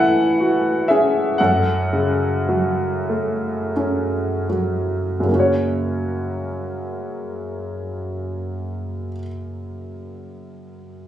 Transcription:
grand piano
Already playing: A2 E3 C#4 E4 A4 B4 E5 F#5 G#5
0.40 F#4
0.88 C#4 G#4 E5
1.38 F#2 A4 F#5
1.93 C#3
2.49 F#3
3.09 A3
3.76 C#4
4.49 F#3
5.20 F#2 C#3
5.28 A#3
5.32 C#4 F#4
5.39 C#5

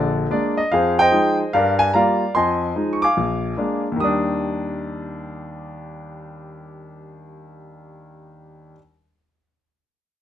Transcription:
grand piano
Already playing: A#1 D3 G#4 D5
0.30 G#3 A#3 D4 D5
0.57 D#5
0.72 F2 G#4 C5 F5
0.99 C5 D#5 G5
1.11 F3 G#3 D#4
1.53 G2 A#4 D5 F5
1.79 G#5
1.94 G3 A#3 F4 D5 F5 A#5
2.35 F2 F3 D#5 G#5 C6
2.75 F3 G#3 D#4
2.93 C#6
3.02 F5 G#5 D6
3.17 A#1
3.57 G#3 A#3 D4
3.92 D#2
3.96 D#3 G3
4.00 D4 D#6

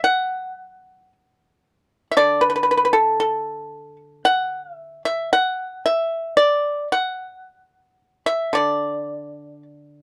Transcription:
pipa
Already playing: F#3
0.04 F#5
2.11 E5
2.17 D3 D5
2.41 B4
2.50 B4
2.56 B4
2.63 B4
2.71 B4
2.77 B4
2.85 B4
2.93 A4
3.20 A4
4.25 F#5
4.74 E5
5.05 E5
5.33 F#5
5.86 E5
6.37 D5
6.92 F#5
8.26 E5
8.53 D3 D5

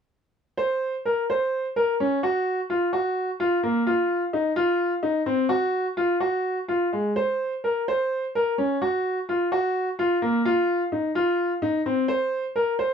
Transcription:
grand piano
0.57 C5
1.05 A#4
1.30 C5
1.76 A#4
2.00 C#4
2.23 F#4
2.70 F4
2.93 F#4
3.40 F4
3.63 A#3
3.87 F4
4.33 D#4
4.56 F4
5.03 D#4
5.26 C4
5.49 F#4
5.97 F4
6.20 F#4
6.68 F4
6.93 G#3
7.16 C5
7.64 A#4
7.88 C5
8.35 A#4
8.58 C#4
8.82 F#4
9.29 F4
9.52 F#4
9.99 F4
10.22 A#3
10.45 F4
10.92 D#4
11.15 F4
11.62 D#4
11.86 C4
12.08 C5
12.56 A#4
12.79 C5

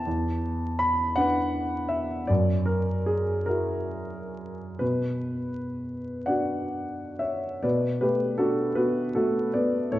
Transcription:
grand piano
Already playing: A5
0.07 E2
0.79 B5
1.16 D4 B4 F#5
1.89 E5
2.27 F#2 D5
2.65 A#4
3.06 G#4
3.46 E4 F#4 A#4
4.79 B2 B4
6.26 D4 F#4 D5 F#5
7.19 C#5 E5
7.62 B2 B4 D5
8.01 A3 G4 B4
8.38 D4 F#4 A4
8.75 B3 F#4 B4
9.15 A3 F#4 A4
9.53 B3 B4 D5
9.92 A2 A4 C#5

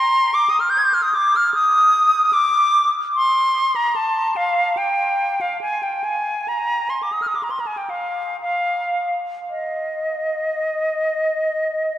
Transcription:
flute
Already playing: C6
0.34 D6
0.50 D#6
0.60 F6
0.70 G6
0.78 G#6
0.84 G6
0.94 F6
1.03 D#6
1.14 D6
1.36 F6
1.54 D#6
2.33 D6
3.16 C6
3.76 A#5
3.96 A5
4.36 F5
4.77 G5
5.41 F5
5.61 G#5
5.83 G5
6.04 G#5
6.48 A#5
6.90 C6
7.03 D6
7.12 D#6
7.22 F6
7.27 D#6
7.35 D6
7.43 A#5
7.51 C6
7.60 A#5
7.67 G#5
7.77 G5
7.90 F5
8.41 F5
9.50 D#5

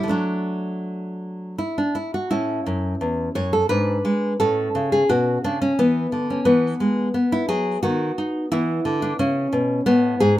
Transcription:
nylon-string guitar
0.03 D3
0.08 F#3 A3 D4
1.58 E4
1.78 D4
1.95 E4
2.14 F#4
2.31 A2 C#4 E4
2.66 F#2
3.01 E2
3.35 F#2 C#5
3.53 A4
3.69 G#2 D4 B4
4.05 G#3
4.40 A2 C#4 A4
4.75 C#3
4.92 G#4
5.09 B2 F#4
5.44 C#3 D4
5.62 C#4
5.79 E3 B3
6.12 D3
6.30 C#4
6.45 E3 B3
6.80 G#3
7.14 B3
7.32 E4
7.49 F#3 G#4
7.83 D#3 B3 F#4
8.18 D#4
8.52 E3 B3 E4
8.85 D3
9.02 D4
9.19 C#3 C#4
9.53 B2
9.86 A2 B3
10.20 G#2 G#4

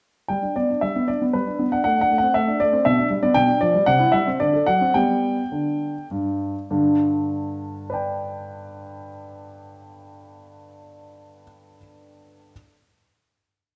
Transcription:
grand piano
0.28 G3 G5
0.42 D4
0.56 B3 D5
0.70 D4
0.81 G3 E5
0.96 B3
1.08 D4 D5
1.22 B3
1.33 G3 B4
1.47 D4
1.59 B3
1.72 D4 F#5
1.84 A3 F#5
1.98 D4 F#5
2.10 A3
2.18 F#5
2.23 C4
2.34 A3 E5
2.48 D4
2.60 A3 D5
2.73 C4
2.85 B2 E5
2.98 D4
3.10 G3
3.23 B3 D5
3.34 B2 G5
3.48 D4
3.61 F3 D5
3.74 G3
3.86 C3 F#5
3.99 E4
4.12 G3 E5
4.27 C4
4.40 D3 D5
4.54 A4
4.67 F#3 F#5
4.81 C4
4.94 G3 B3 G4 G5
5.52 D3
6.11 G2
6.71 G2 D3
7.90 B4 D5
7.94 G5

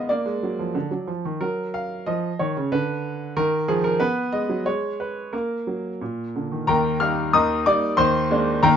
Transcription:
grand piano
Already playing: G#3 F5
0.09 A#3 D5
0.26 G#3
0.43 F#3
0.59 F3
0.75 D3
0.91 F#3
1.07 F3
1.25 D#3
1.41 F#3 A#4
1.74 F5
2.06 F3 D#5
2.39 D#3 C#5
2.57 C#3
2.72 D3 B4
3.37 D#3 A#4
3.68 F3 G#4
3.84 A#4
4.00 B3 B4
4.33 G#3 D#5
4.49 F#3
4.66 G#3 C#5
5.00 B4
5.33 A#3 A#4
5.67 F#3
6.01 A#2
6.36 D3
6.52 D#3
6.67 D#2 D#3 A#4 G5 A#5
7.00 G3 A#3 D#4 F5 F6
7.33 D#2 D#3 D#5 A#5 D#6
7.66 G3 A#3 D#4 D5 D6
7.97 D#2 D#3 C5 C6
8.30 G#3 A#3 D4
8.63 D#2 D#3 A#4 G5 A#5

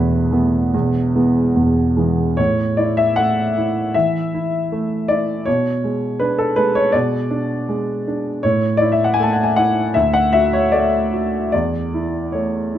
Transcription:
grand piano
Already playing: E1 E2 E3 A3 B3 E4 B4
0.31 E3 A3 B3
0.74 E1 E2
1.15 E3 G#3 B3
1.55 E1 E2
1.97 E3 G#3 B3
2.37 A2 C#5
2.77 E4 D5
2.97 E5
3.16 A3 F#5
3.58 E4
3.94 E3 E5
4.34 E4
4.72 A3
5.08 E4 D5
5.46 B2 C#5
5.84 G#3
6.20 D4 B4
6.38 A4
6.56 G#3 B4
6.75 C#5
6.92 B2 D5
7.31 D4
7.69 G#3
8.08 D4
8.43 A2 C#5
8.77 D5
8.82 E4
8.92 E5
9.04 F#5
9.14 G#5
9.20 A3 A5
9.33 F#5
9.44 G#5
9.56 E4 F#5
9.94 D2 E5
10.14 F#5
10.33 F#4 E5
10.53 C#5
10.72 A3 D5
11.13 F#4
11.52 E2 D5
11.94 E4
12.32 A3 C#5
12.75 E4

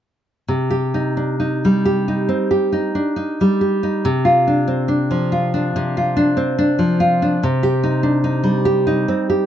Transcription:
nylon-string guitar
0.48 C3
0.70 G4
0.94 D#4
1.17 D4
1.40 D#4
1.65 G3
1.85 G4
2.08 D#4
2.29 C4
2.51 G4
2.72 D#4
2.95 D4
3.16 D#4
3.41 G3
3.61 G4
3.83 D#4
4.05 C3
4.25 F4
4.47 D4
4.68 C4
4.88 D4
5.11 F3
5.32 F4
5.54 D4
5.76 C3
5.97 F4
6.17 D4
6.37 C4
6.59 D4
6.79 F3
7.00 F4
7.22 D4
7.43 C3
7.63 G4
7.84 D#4
8.03 D4
8.24 D#4
8.44 G3
8.65 G4
8.87 D#4
9.08 C4
9.30 G4

